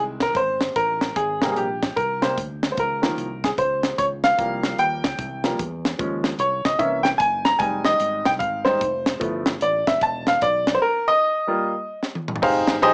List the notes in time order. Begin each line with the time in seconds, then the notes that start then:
Already playing: C2 D#3 G3 G#3
0.20 A#4, kick, snare, closed hi-hat
0.34 G#1 C5, kick, closed hi-hat
0.61 snare, closed hi-hat
0.76 A1 A#4, kick, closed hi-hat
1.01 snare, closed hi-hat
1.16 G#1 G#4, kick, closed hi-hat
1.42 C3 G3 A#3, snare, closed hi-hat
1.52 G#4
1.56 A#1 G4, closed hi-hat
1.83 kick, snare, closed hi-hat
1.96 C2 A#4, kick, closed hi-hat
2.22 C3 G3 A#3 C5, snare, closed hi-hat
2.38 D2, kick, closed hi-hat
2.63 snare, closed hi-hat
2.72 C5
2.77 C#2 A#4, kick, closed hi-hat
3.02 D#3 F3 A#3, snare, closed hi-hat
3.17 C2, closed hi-hat
3.44 G#4, kick, snare, closed hi-hat
3.58 C#2 C5, kick, closed hi-hat
3.83 snare, closed hi-hat
3.98 C#2 C#5, kick, closed hi-hat
4.24 F5, snare, closed hi-hat
4.37 C2 F3 G3 A#3, kick, closed hi-hat
4.63 snare, closed hi-hat
4.78 D#2 G5, closed hi-hat
5.04 C#2, kick, snare, closed hi-hat
5.18 C2, kick, closed hi-hat
5.44 F3 G3 A#3, snare, closed hi-hat
5.59 E2, kick, closed hi-hat
5.85 snare, closed hi-hat
5.99 D#2 F3 G#3 C#4, kick, closed hi-hat
6.24 snare, closed hi-hat
6.38 C2 C#5, closed hi-hat
6.65 C#2 D#5, kick, snare, closed hi-hat
6.79 C2 E3 A#3 C#4 E5, kick, closed hi-hat
7.03 G5, snare, closed hi-hat
7.18 F#1 G#5, kick, closed hi-hat
7.45 A#5, snare, closed hi-hat
7.59 F1 G3 G#3 D#4 G#5, kick, closed hi-hat
7.85 D#5, snare, closed hi-hat
8.00 G#1, closed hi-hat
8.25 C2 G5, kick, snare, closed hi-hat
8.39 G#1 F5, kick, closed hi-hat
8.65 G3 G#3 D#4 C5, snare, closed hi-hat
8.81 F1, kick, closed hi-hat
9.06 snare, closed hi-hat
9.20 G1 F3 A3 B3 E4, kick, closed hi-hat
9.46 snare, closed hi-hat
9.61 A1 D5, closed hi-hat
9.87 F1 E5, kick, snare, closed hi-hat
10.01 E1 A5, kick, closed hi-hat
10.27 F5, snare, closed hi-hat
10.41 B1 D5, kick, closed hi-hat
10.67 snare, closed hi-hat
10.75 C5
10.82 A#4
11.08 D#5
11.47 G3 A#3 F4
12.02 snare
12.15 high tom
12.28 mid tom
12.35 floor tom
12.42 F1 D#4 G4 G#4 C5 F5, kick, crash
12.67 G1, snare, ride
12.82 A#1 D#4 G4 G#4 C5 D#5, ride